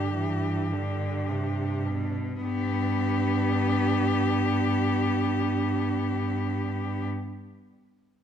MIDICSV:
0, 0, Header, 1, 5, 480
1, 0, Start_track
1, 0, Key_signature, 1, "major"
1, 0, Tempo, 1138520
1, 1029, Time_signature, 12, 3, 24, 8
1, 1030, Tempo, 1088929
1, 2470, Tempo, 1067616
1, 3606, End_track
2, 0, Start_track
2, 0, Title_t, "Cello"
2, 0, Program_c, 0, 42
2, 0, Note_on_c, 0, 67, 57
2, 773, Note_off_c, 0, 67, 0
2, 1034, Note_on_c, 0, 67, 59
2, 3080, Note_off_c, 0, 67, 0
2, 3606, End_track
3, 0, Start_track
3, 0, Title_t, "Cello"
3, 0, Program_c, 1, 42
3, 0, Note_on_c, 1, 62, 38
3, 905, Note_off_c, 1, 62, 0
3, 1033, Note_on_c, 1, 62, 46
3, 3079, Note_off_c, 1, 62, 0
3, 3606, End_track
4, 0, Start_track
4, 0, Title_t, "Cello"
4, 0, Program_c, 2, 42
4, 0, Note_on_c, 2, 50, 35
4, 60, Note_off_c, 2, 50, 0
4, 63, Note_on_c, 2, 52, 38
4, 302, Note_on_c, 2, 50, 38
4, 308, Note_off_c, 2, 52, 0
4, 543, Note_on_c, 2, 48, 31
4, 550, Note_off_c, 2, 50, 0
4, 784, Note_on_c, 2, 47, 33
4, 791, Note_off_c, 2, 48, 0
4, 1025, Note_off_c, 2, 47, 0
4, 1028, Note_on_c, 2, 59, 44
4, 3074, Note_off_c, 2, 59, 0
4, 3606, End_track
5, 0, Start_track
5, 0, Title_t, "Cello"
5, 0, Program_c, 3, 42
5, 0, Note_on_c, 3, 43, 44
5, 902, Note_off_c, 3, 43, 0
5, 1027, Note_on_c, 3, 43, 46
5, 3073, Note_off_c, 3, 43, 0
5, 3606, End_track
0, 0, End_of_file